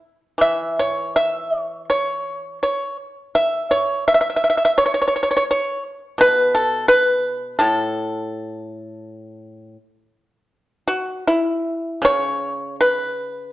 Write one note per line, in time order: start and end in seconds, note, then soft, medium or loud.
0.38 2.60 E3 medium
0.38 0.75 E5 medium
0.79 1.13 C#5 medium
1.16 1.62 E5 medium
1.62 1.84 C#5 medium
1.90 2.58 C#5 medium
2.63 2.96 C#5 medium
3.35 3.68 E5 medium
3.71 4.04 C#5 medium
4.08 4.13 E5 medium
4.14 4.20 E5 medium
4.21 4.27 E5 medium
4.30 4.35 E5 soft
4.36 4.42 E5 medium
4.44 4.49 E5 soft
4.50 4.56 E5 medium
4.57 4.64 E5 medium
4.65 4.71 E5 medium
4.78 4.84 C#5 medium
4.86 4.92 C#5 medium
4.94 5.00 C#5 medium
5.02 5.06 C#5 medium
5.08 5.14 C#5 medium
5.16 5.22 C#5 medium
5.23 5.29 C#5 medium
5.31 5.35 C#5 soft
5.37 5.43 C#5 medium
5.51 5.83 C#5 medium
6.18 7.59 B2 medium
6.18 6.53 B4 loud
6.55 6.87 A4 medium
6.88 7.55 B4 loud
7.59 9.76 A2 medium
7.59 9.38 A4 medium
9.38 9.69 G#4 medium
9.69 10.00 G4 medium
10.00 10.88 F#4 medium
10.88 11.23 F#4 medium
11.27 12.00 E4 medium
12.02 13.53 C#3 medium
12.02 12.75 C#5 loud
12.81 13.49 B4 medium